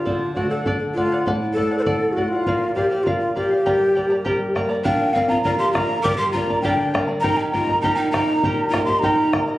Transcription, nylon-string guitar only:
\new Staff \with { instrumentName = "Nylon-string guitar" } { \time 2/4 \key g \minor \tempo 4 = 100 d8 a8 d'8 a8 | a,8 a8 d'8 a8 | bes,8 f8 d'8 f8 | g,8 bes8 g8 bes8 |
bes,8 <f bes d'>8 f,8 <f bes d'>8 | g,8 <g bes d'>8 d8 <g bes d'>8 | ees8 <bes ees' g'>8 bes,8 <bes ees' g'>8 | bes,8 <bes ees' g'>8 bes,8 <bes ees' g'>8 | }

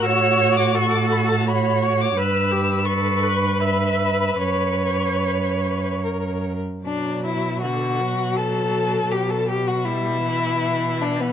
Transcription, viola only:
\new Staff \with { instrumentName = "Viola" } { \time 3/4 \key b \minor \tempo 4 = 80 cis''4 a'4 cis''4 | b'8 g'8 a'8 b'8 e''4 | cis''2~ cis''8 r8 | fis4 d8 fis4.~ |
fis4 g8 e4. | }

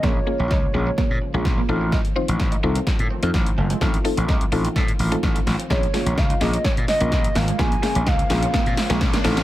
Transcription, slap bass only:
\new Staff \with { instrumentName = "Slap bass" } { \clef bass \time 4/4 \key bes \minor \tempo 4 = 127 bes,,8 r16 bes,,16 des,8 bes,,8 r16 bes,16 r16 bes,,16 bes,,8 a,,8~ | a,,8 r16 a,,16 a,,8 c,8 r16 a,16 r16 f,16 a,,8 ges,,8 | a,,8 r16 a,,16 c,8 a,,8 a,8 a,,8 a,,8 a,,16 r16 | bes,,8 r16 bes,,16 des,8 bes,,8 r16 bes,16 r16 bes,,16 bes,,8 aes,,8 |
bes,,8 r16 bes,,16 des,8 bes,,8 r16 bes,16 r16 bes,,16 bes,,8 a,,8 | }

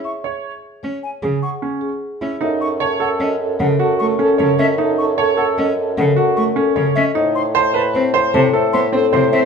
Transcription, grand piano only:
\new Staff \with { instrumentName = "Grand piano" } { \time 6/4 \key fis \minor \tempo 4 = 152 r8 cis''8 r2 gis'8 r8 cis'8 r4 e'8 | \key fis \dorian dis'8 r8 cis''8 a'8 r4. fis'8 r8 cis'8 cis''8 r8 | dis'8 r8 cis''8 a'8 r4. fis'8 r8 cis'8 cis''8 r8 | dis'8 r8 c''8 b'8 r8 c''8 r8 a'8 r8 c'8 c''8 r8 | }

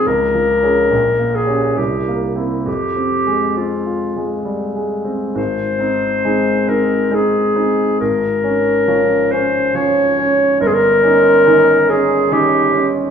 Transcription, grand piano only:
\new Staff \with { instrumentName = "Grand piano" } { \time 3/4 \key f \minor \tempo 4 = 69 \tuplet 3/2 { des,8 f8 <des' aes'>8 bes,,8 bes8 <des' g'>8 c,8 bes8 <c' e'>8 } | \tuplet 3/2 { f,8 c'8 aes8 c'8 f'8 aes8 g8 aes8 c'8 } | \key aes \major aes,,8 <c' ees'>8 <aes c' ees'>8 <c' ees'>8 <aes c' ees'>8 <c' ees'>8 | aes,,8 des'8 <f des'>8 des'8 <f des'>8 des'8 |
g,,8 <des' ees'>8 <ees des' ees'>8 <des' ees'>8 <ees des' ees'>8 <des' ees'>8 | }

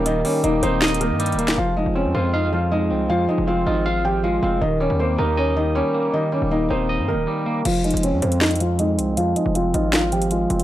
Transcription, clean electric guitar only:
\new Staff \with { instrumentName = "Clean electric guitar" } { \time 4/4 \key f \minor \tempo 4 = 158 <ees g bes ees''>8 g8 bes8 ees'8 ees''8 ees8 g8 bes8 | f8 aes8 c'8 f'8 f''8 f8 aes8 c'8 | f8 aes8 c'8 f'8 f''8 f8 aes8 c'8 | ees8 g8 bes8 ees'8 ees''8 ees8 g8 bes8 |
ees8 g8 bes8 ees'8 ees''8 ees8 g8 bes8 | f8 aes8 c'8 f'8 f''8 f8 aes8 c'8 | f8 aes8 c'8 f'8 f''8 f8 aes8 c'8 | }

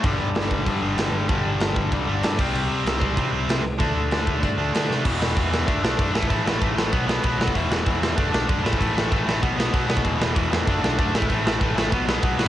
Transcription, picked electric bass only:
\new Staff \with { instrumentName = "Picked electric bass" } { \clef bass \time 4/4 \key e \minor \tempo 4 = 192 g,,8 g,8 g,,8 g,,8 g,8 g,,8 g,,8 g,,8 | g,,8 g,,8 g,,8 g,,8 c,8 g,,8 g,8 c,8 | c,8 c8 c,8 c,8 c8 c,8 c,8 c,8 | d,8 d,8 d,8 d,8 g,8 d,8 d8 c8 |
e,,8 e,,8 e,4 fis,,8 b,,8 fis,8 a,,8 | a,,8 a,,8 a,,8 a,,8 b,,4 b,,8 b,,8 | e,,8 e,,8 e,4 fis,,8 b,,8 fis,8 a,,8 | a,,8 a,,8 a,,8 a,,8 b,,4 b,,8 b,,8 |
e,,8 e,,8 e,4 fis,,8 b,,8 fis,8 a,,8 | a,,8 a,,8 a,,8 a,,8 b,,4 b,,8 b,,8 | }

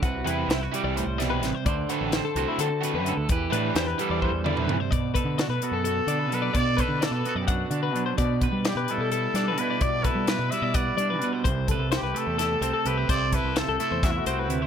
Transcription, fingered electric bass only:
\new Staff \with { instrumentName = "Fingered electric bass" } { \clef bass \time 7/8 \key e \minor \tempo 4 = 128 c,8 e,8 c,8 r16 c,8 c,8. a,,16 r16 | d,8 r16 a,,8 r16 c,16 r16 d8. fis,8 d,16 | e,8 a,8 e,8 r16 e,8 e,8. e16 r16 | b,8. d8 b,16 r16 fis,8. d8 b,8 |
b,8. d8 b,16 r16 fis,8. d8 b,8 | b,8. g8 b,16 r16 b,8. g8 b,8 | b,8. g8 b,16 r16 b,8. g8 b,8 | c,8. c,8 c,16 r16 e,8. c,16 r16 c,8 |
c,8. c,8 c,16 r16 e,8. c,8 d,8 | }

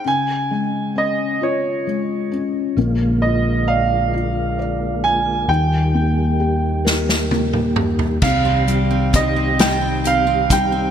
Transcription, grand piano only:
\new Staff \with { instrumentName = "Grand piano" } { \time 6/8 \key c \phrygian \tempo 4. = 44 aes''4 ees''8 des''4 r8 | r8 ees''8 f''4. aes''8 | g''2 r4 | f''4 ees''8 g''8 f''8 g''8 | }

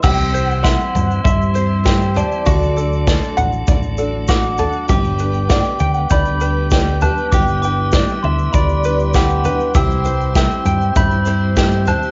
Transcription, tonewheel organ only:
<<
  \new Staff \with { instrumentName = "Tonewheel organ" } { \time 4/4 \key c \lydian \tempo 4 = 99 c'1 | d'1~ | d'1 | e'1 |
e'1 | }
  \new Staff \with { instrumentName = "Tonewheel organ" } { \clef bass \time 4/4 \key c \lydian << { g1 | a1 | b1~ | b1 |
c'1 | } \\ { e1 | fis1 | g1~ | g1~ |
g1 | } >> }
>>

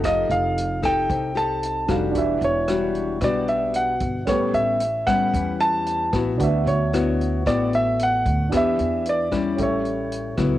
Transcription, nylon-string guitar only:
\new Staff \with { instrumentName = "Nylon-string guitar" } { \time 4/4 \key d \major \tempo 4 = 113 << { <ees' g' a'>4. <ees' g' a'>4 <ees' g' a'>4 <g d' fis'>8~ | <g d' fis'>8 r8 <g d' fis'>4 <g d' fis'>4. r8 | <g b cis'>4 r8 <g b cis'>2 <b e' fis'>8~ | <b e' fis'>4 <b e' fis'>4 <b e' fis'>2 |
<b d' g'>4 r8 <g cis' e'>2 <fis b e'>8 | } \\ { f2 c2 | e2 b,2 | a,2 e2 | d2 a,2 |
e2 a,2 | } >> }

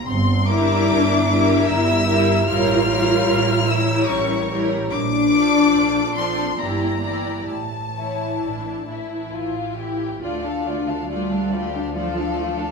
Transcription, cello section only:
\new Staff \with { instrumentName = "Cello section" } { \time 3/4 \key d \minor \tempo 4 = 73 c'8 d'4. e'4 | f'4. e'8 cis'8 r8 | d'4. c'8 bes4 | a2 r4 |
d4 g4 f4 | }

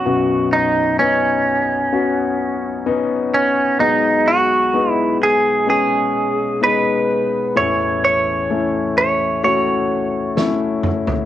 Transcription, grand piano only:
<<
  \new Staff \with { instrumentName = "Grand piano" } { \time 4/4 \key b \mixolydian \tempo 4 = 64 <b cis' fis'>4 <b cis' dis'>4 <b cis' fis'>4 <b cis' dis'>4 | <gis b dis'>4 <gis b dis'>4 <gis b cis'>4 <gis b dis'>4 | <a b cis' e'>4 <a cis' e'>4 <a cis' fis'>4 <a cis' e'>4 | }
  \new Staff \with { instrumentName = "Grand piano" } { \clef bass \time 4/4 \key b \mixolydian <b,, fis,>1 | <b,, b,>1 | <a,, e,>1 | }
>>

